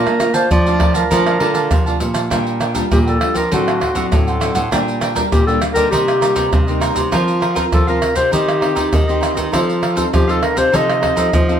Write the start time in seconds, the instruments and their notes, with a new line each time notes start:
Already playing: nylon-string guitar A#2 A3 D4 F4, clarinet A#4
0.06 nylon-string guitar A#3, cavaquinho D5 F5 A5, pandeiro, tamborim, maracas
0.20 nylon-string guitar A3 D4 F4, muted cavaquinho stroke, pandeiro, tamborim, maracas
0.34 clarinet C5, cavaquinho D5 F5 A5, pandeiro, maracas
0.51 nylon-string guitar F3, clarinet D5, pandeiro, maracas, surdo
0.67 nylon-string guitar A3 D4 F4, cavaquinho D5 F5 A5, pandeiro, maracas
0.80 cavaquinho A#4 D5 F5 A5, pandeiro, tamborim, surdo
0.94 clarinet A#4, cavaquinho D5 F5 A5, pandeiro, maracas
1.11 nylon-string guitar A#2 F3 A3 D4 F4, cavaquinho A#4 D5 F5 A5, pandeiro, maracas, surdo
1.26 cavaquinho D5 F5 A5, pandeiro, tamborim, maracas
1.40 nylon-string guitar D3 A3 D4 F4, cavaquinho A#4 D5 F5 A5, pandeiro
1.54 cavaquinho D5 F5 A5, pandeiro, maracas
1.71 nylon-string guitar C3 F3, pandeiro, tamborim, maracas, surdo
1.86 nylon-string guitar A3 D4 F4, cavaquinho D5 F5 A5, pandeiro, maracas
2.00 nylon-string guitar A#2, muted cavaquinho stroke, pandeiro, maracas
2.14 cavaquinho D5 F5 A5, pandeiro, tamborim, maracas
2.30 nylon-string guitar A#2 G3 D4 F4, cavaquinho D4 A#4 D5 G5, pandeiro, tamborim, maracas, surdo
2.47 pandeiro, maracas
2.60 cavaquinho D4 A#4 D5 G5, pandeiro, tamborim, maracas
2.74 nylon-string guitar G3 D4 F4, cavaquinho D4 A#4 D5 G5, pandeiro, maracas, surdo
2.92 nylon-string guitar A#2 F3, clarinet G4, pandeiro, tamborim, maracas, surdo
3.06 clarinet A4, cavaquinho A#4 D5 G5, pandeiro, maracas
3.21 nylon-string guitar G3 D4 F4, pandeiro, tamborim
3.34 nylon-string guitar F3, cavaquinho A#4 D5 G5, clarinet A#4, pandeiro, maracas, surdo
3.51 nylon-string guitar A2 F#3 C4 D4, cavaquinho D4 A4 C5 F#5, clarinet F#4, pandeiro, maracas, surdo
3.68 pandeiro, tamborim, maracas
3.80 cavaquinho D4 A4 C5 F#5, pandeiro, tamborim, surdo
3.95 nylon-string guitar A2 F#3 C4 D4, cavaquinho D4 A4 C5 F#5, pandeiro, maracas, surdo
4.12 nylon-string guitar A2, pandeiro, tamborim, maracas, surdo
4.27 cavaquinho A4 C5 F#5, pandeiro, maracas
4.40 nylon-string guitar F#3 C4 D4, cavaquinho D4 A4 C5 F#5, pandeiro, tamborim, maracas
4.55 nylon-string guitar A2, cavaquinho A4 C5 F#5, pandeiro, maracas, surdo
4.71 nylon-string guitar A#2 G3 A#3 D4, cavaquinho D4 A#4 D5 G5, pandeiro, tamborim, maracas, surdo
4.88 pandeiro, maracas
5.01 cavaquinho D4 A#4 D5 G5, pandeiro, tamborim, maracas
5.15 nylon-string guitar G3 A#3 D4, cavaquinho D4 A#4 D5 G5, pandeiro, maracas, surdo
5.32 nylon-string guitar A#2, clarinet G4, pandeiro, tamborim, maracas, surdo
5.47 nylon-string guitar G3 A#3 D4, clarinet A4, cavaquinho A#4 D5 G5, pandeiro, maracas
5.62 pandeiro, tamborim, maracas
5.74 nylon-string guitar D3 G3 A#3 D#4, clarinet A#4, cavaquinho A#4 D5 G5, pandeiro, maracas, surdo
5.91 nylon-string guitar C3, cavaquinho D#4 A#4 C5 D#5, clarinet G4, pandeiro, maracas, surdo
6.08 pandeiro, tamborim, maracas
6.21 nylon-string guitar G3 A#3 D#4, cavaquinho D#4 A#4 C5 D#5, pandeiro, tamborim, maracas
6.35 nylon-string guitar C3, cavaquinho D#4 A#4 C5 D#5, pandeiro, maracas, surdo
6.51 nylon-string guitar G2 C3, pandeiro, tamborim, maracas, surdo
6.67 nylon-string guitar G3 A#3 D#4, cavaquinho A#4 C5 D#5, pandeiro, maracas
6.80 cavaquinho D#4 A#4 C5 D#5, pandeiro, tamborim, maracas
6.95 nylon-string guitar C3, cavaquinho A#4 C5 D#5, pandeiro, maracas, surdo
7.11 nylon-string guitar F3 C4 F4 A#4, cavaquinho F4 A#4 C5 F5, pandeiro, tamborim, maracas, surdo
7.28 pandeiro, maracas
7.40 cavaquinho F4 A#4 C5 F5, pandeiro, tamborim
7.55 nylon-string guitar C4 F4 A#4, cavaquinho F4 A#4 C5 F5, pandeiro, maracas, surdo
7.72 nylon-string guitar C3 F3, clarinet A4, pandeiro, tamborim, maracas, surdo
7.87 nylon-string guitar C4 F4 A#4, clarinet A#4, cavaquinho A#4 C5 F5, pandeiro, maracas
8.02 pandeiro, tamborim, maracas
8.15 nylon-string guitar C3 C4 D#4 G4, cavaquinho A#4 C5 F5, clarinet C5, pandeiro, maracas, surdo
8.31 nylon-string guitar D#3, cavaquinho D#4 G4 C5 D#5, clarinet G4, pandeiro, maracas, surdo
8.48 pandeiro, tamborim, maracas
8.61 nylon-string guitar C4 D#4 G4, cavaquinho D#4 G4 C5 D#5, pandeiro, tamborim
8.75 nylon-string guitar D#3, cavaquinho D#4 G4 C5 D#5, pandeiro, maracas, surdo
8.93 nylon-string guitar D#3, pandeiro, tamborim, maracas, surdo
9.08 nylon-string guitar C4 D#4 G4, cavaquinho G4 C5 D#5, pandeiro, maracas
9.21 cavaquinho D#4 G4 C5 D#5, pandeiro, tamborim, maracas
9.35 nylon-string guitar D#3, cavaquinho G4 C5 D#5, pandeiro, maracas, surdo
9.52 nylon-string guitar F3 C4 D#4 A4, cavaquinho D#4 A4 C5 F5, pandeiro, tamborim, maracas, surdo
9.69 pandeiro, maracas
9.81 cavaquinho D#4 A4 C5 F5, pandeiro, tamborim
9.96 nylon-string guitar C4 D#4 A4, cavaquinho D#4 A4 C5 F5, pandeiro, maracas, surdo
10.13 nylon-string guitar C3 F3, clarinet G4, pandeiro, tamborim, maracas, surdo
10.27 nylon-string guitar C4 D#4 A4, clarinet A4, cavaquinho A4 C5 F5, pandeiro, maracas
10.43 clarinet A#4, pandeiro, tamborim
10.56 nylon-string guitar C3 C4 D#4 A4, cavaquinho A4 C5 F5, clarinet C5, pandeiro, maracas, surdo
10.72 nylon-string guitar C3 F3 C4 D#4 A4, cavaquinho D#4 A4 C5 F5, clarinet D#5, pandeiro, maracas, surdo
10.89 pandeiro, tamborim, maracas
11.01 nylon-string guitar C4 D#4 A4, cavaquinho D#4 A4 C5 F5, pandeiro, tamborim, surdo
11.16 nylon-string guitar F3, cavaquinho D#4 A4 C5 F5, pandeiro, maracas, surdo
11.33 nylon-string guitar C3 F3, pandeiro, tamborim, maracas, surdo
11.48 nylon-string guitar C4 D#4 A4, cavaquinho A4 C5 F5, pandeiro, maracas